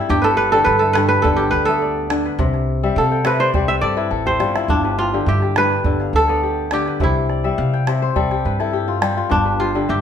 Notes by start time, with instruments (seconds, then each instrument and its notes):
Already playing: kora C3 G3 C4 E4 G4 A4
0.09 upright bass G1, kora G2 G4, calabash thump
0.22 kora A4 B4
0.37 kora A4 B4, calabash click
0.52 kora D3 G4 A4
0.65 upright bass G2, kora B4
0.79 kora A4 E5, calabash click
0.93 kora G2 B4, calabash click
1.09 kora B4
1.22 upright bass G1, kora D3 A4, calabash thump
1.36 kora G4, calabash click
1.51 upright bass D2, kora B4
1.65 kora B3 A4 E5, calabash click
1.82 kora D5
2.10 kora D3, calabash click
2.26 kora B4, calabash click
2.39 upright bass C2, kora C3, calabash thump, calabash click
2.54 calabash click
2.83 kora G3 E5
2.96 upright bass C3, kora A4 F5
3.12 kora G5
3.25 kora C3 B4 E5, calabash click
3.40 kora C5 D5
3.54 upright bass C2, kora G3 C5, calabash thump
3.68 kora B4 E5
3.81 upright bass G2, kora A4 D5, calabash click
3.97 kora E4 B4
4.11 upright bass A1, kora A4, calabash thump
4.26 kora G4 C5, calabash thump
4.40 upright bass G1, kora G3 F4, calabash click
4.55 kora E4, calabash click
4.68 upright bass G1, kora G2 D4, calabash thump
4.85 kora B4
4.98 kora F4 G4, calabash click
5.14 kora D3 G4
5.26 upright bass G2, kora G4 E5
5.42 kora G4, calabash click
5.56 kora G2 B4, calabash click
5.84 upright bass G1, kora D3, calabash thump
6.00 kora F5, calabash click
6.13 upright bass D2, kora A4
6.28 kora B3 D5, calabash click
6.43 kora G4
6.71 kora D3 G4, calabash click
6.86 kora B4, calabash click
7.00 upright bass C2, kora C3 E4, calabash thump
7.29 kora D5, calabash click
7.44 kora G3 E5
7.58 upright bass C3, kora F5
7.73 kora G5, calabash click
7.87 kora C3 E5, calabash click
8.02 kora C5
8.16 upright bass C2, kora G3 A4, calabash thump
8.31 kora G4, calabash click
8.45 upright bass G2, kora B4
8.60 kora E4 A4, calabash click
8.73 kora G4
8.88 kora F4
9.02 kora G3 G4, calabash click
9.17 kora F4, calabash click
9.30 upright bass G1, kora G2 D4, calabash thump
9.45 kora B4
9.60 kora F4 G4, calabash click
9.75 kora D3 G4
9.89 upright bass G2, kora G4 E5